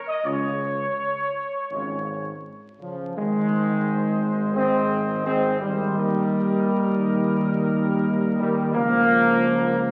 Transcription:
0.07 D#5
0.25 C#2 C#3 G#3 C#4 F4 C#5
1.71 G#1 C#3 G#3 C#4 F4
2.80 C#3 F3
3.16 G#1 D#3 G#3 C5 D#5
4.55 G#3 C4 C5 D#5
5.25 G#3 C4 C5 D#5
5.60 D#3 G3
5.96 D#2 A#4 D#5
8.39 D#3 G3
8.74 C#2 F3 A#3 A#4 F5

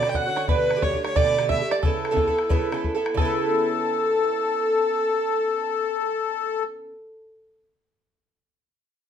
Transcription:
0.03 B2 D3 C#4 F#4, bodhran
0.10 G5, bodhran
0.15 F#5
0.26 D3 C#4 F#4 F#5
0.36 C#5 F#5, bodhran
0.48 B2 D3 A3 G4 B4, bodhran
0.71 bodhran
0.76 B2 D3 A3 G4
0.82 C#5, bodhran
0.93 D3 A3 G4, bodhran
1.04 C#5, bodhran
1.16 B2 D3 A3 G4 D5, bodhran
1.38 B2 D3 A3 G4, bodhran
1.49 E5, bodhran
1.61 D3 A3 G4
1.71 D5, bodhran
1.83 C#3 B3 E4 A4, bodhran
2.05 bodhran
2.11 C#3 B3 E4 A4
2.17 bodhran
2.27 B3 E4 A4, bodhran
2.39 bodhran
2.49 C#3 B3 E4 A4, bodhran
2.72 C#3 B3 E4 A4, bodhran
2.84 bodhran
2.95 B3 E4 A4
3.06 bodhran
3.14 C#3 A4, bodhran
3.19 B3 E4 A4
3.25 A4

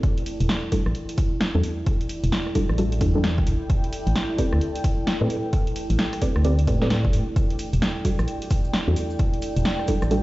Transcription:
0.03 E4, kick, closed hi-hat
0.18 A4, closed hi-hat
0.26 open hi-hat
0.40 E1, closed hi-hat
0.49 G5, snare, closed hi-hat
0.58 D5
0.72 G3 D4 E4 F#4 A4, kick, open hi-hat
0.86 A1, cross-stick
0.95 closed hi-hat
1.09 closed hi-hat
1.18 kick, open hi-hat
1.41 snare, closed hi-hat
1.55 E2 G3 D4 E4 F#4 A4
1.64 open hi-hat
1.86 kick, closed hi-hat
2.01 closed hi-hat
2.09 open hi-hat
2.24 E1, closed hi-hat
2.32 snare, closed hi-hat
2.47 cross-stick
2.55 G3 D4 E4 F#4 A4, kick, open hi-hat
2.69 A1, cross-stick
2.78 G3 D4 E4 F#4 A4, closed hi-hat
2.92 closed hi-hat
3.01 E2 G3 D4 E4 F#4 A4, kick, open hi-hat
3.15 G3 D4 E4 F#4 A4
3.24 snare, closed hi-hat
3.38 kick
3.47 A1, open hi-hat
3.70 kick, closed hi-hat
3.84 closed hi-hat
3.93 open hi-hat
4.07 A1, closed hi-hat
4.16 snare, closed hi-hat
4.38 C4 G4 A4 B4 D5, kick, open hi-hat
4.53 D2, cross-stick
4.61 closed hi-hat
4.75 closed hi-hat
4.84 kick, open hi-hat
5.07 snare, closed hi-hat
5.21 A2 C4 G4 A4 B4 D5
5.30 open hi-hat
5.53 kick, closed hi-hat
5.67 closed hi-hat
5.76 open hi-hat
5.90 A1, closed hi-hat
5.99 snare, closed hi-hat
6.13 cross-stick, open hi-hat
6.22 C4 G4 A4 B4 D5, kick, open hi-hat
6.36 D2, cross-stick
6.45 C4 G4 A4 B4 D5, closed hi-hat
6.59 closed hi-hat
6.67 A2 C4 G4 A4 B4 D5, kick, open hi-hat
6.82 C4 G4 A4 B4 D5, snare
6.90 snare, closed hi-hat
7.05 E1, kick
7.13 A2, open hi-hat
7.36 kick, closed hi-hat, cabasa
7.50 closed hi-hat
7.59 open hi-hat, cabasa
7.73 E1, closed hi-hat, cabasa
7.82 snare, closed hi-hat, cabasa
8.05 G3 D4 E4 F#4 A4, kick, open hi-hat, cabasa
8.19 A1, cross-stick, cabasa
8.28 closed hi-hat, cabasa
8.42 closed hi-hat
8.50 kick, open hi-hat, cabasa
8.65 cabasa
8.74 snare, closed hi-hat, cabasa
8.88 E2 G3 D4 E4 F#4 A4
8.96 open hi-hat, cabasa
9.10 cabasa
9.19 kick, closed hi-hat, cabasa
9.33 closed hi-hat
9.42 open hi-hat, cabasa
9.56 E1, closed hi-hat, cabasa
9.65 snare, closed hi-hat, cabasa
9.79 cross-stick
9.88 G3 D4 E4 F#4 A4, kick, open hi-hat, cabasa
10.02 A1, cross-stick, cabasa
10.11 G3 D4 E4 F#4 A4, closed hi-hat, cabasa

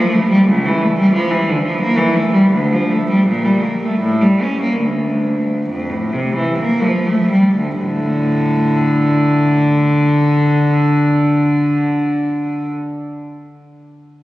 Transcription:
Already playing: F3
0.14 A3
0.31 G3
0.48 C#2
0.66 E3
0.81 A3
0.99 G3
1.13 F3
1.31 E3
1.49 D3
1.64 F3
1.81 A#3
1.97 E3
2.15 A3
2.34 G3
2.53 D2
2.73 F3
2.91 A3
3.10 G3
3.27 A#2
3.44 G3
3.63 A#3
3.83 A3
3.99 A2
4.21 G3
4.43 C#4
4.61 A#3
4.81 D2
5.69 F2
5.90 A2
6.13 C3
6.35 E3
6.59 A#3
6.82 F3
7.07 A3
7.31 G3
7.55 D2
7.78 A2 D3

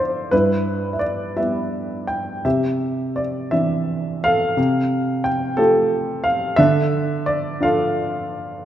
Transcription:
Already playing: D3 D4 E4 F4 A4 C5 D5 E5 F5
0.31 G2 E4 B4
0.93 E5
0.99 D5
1.36 G3 B3 E4 E5
2.07 G5
2.45 C3 G4 E5
3.16 D5
3.51 E3 C4 D4 E5
4.24 A4 F5
4.57 C3
5.24 G5
5.57 A3 F4 G4 A4
6.24 F5
6.56 D3 A4 E5
7.26 D5
7.60 D4 F4 A4 F5

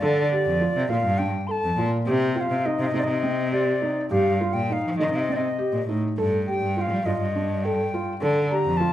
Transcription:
0.00 D3 A4 D5
0.32 G4
0.46 F2
0.61 F4
0.76 C3
0.89 A#2 F4 F5
1.05 G2
1.18 D4 G5
1.47 A4 C6
1.51 A5
1.64 F2
1.78 A#2 F4
2.07 C3 G4
2.35 F4 G5
2.41 F5
2.51 C3
2.65 D#4 D#5
2.79 C3 F5
2.87 D#5
2.94 C3 D#4
3.00 D5
3.04 C3 D#5
3.23 C4
3.52 G4 D5
3.82 D#4
4.10 G2 G4 F5
4.41 F4
4.53 A#2 G5
4.69 D#4 F5 G5
4.84 F3
4.98 D#3 D#4 D#5
5.13 C3 F5
5.19 D#5
5.29 C4 D5
5.36 D#5
5.58 G4
5.73 A#2
5.87 A2 D#4
6.17 G2 A4
6.47 G4 G5
6.62 G2
6.76 F4 G5
6.81 F5
6.92 G3
7.06 G2 F4 D#5
7.22 G2
7.35 D4
7.64 A4 G5
7.94 F4
8.22 D3 A4
8.50 G4 A#5
8.65 F2
8.77 F4 A5

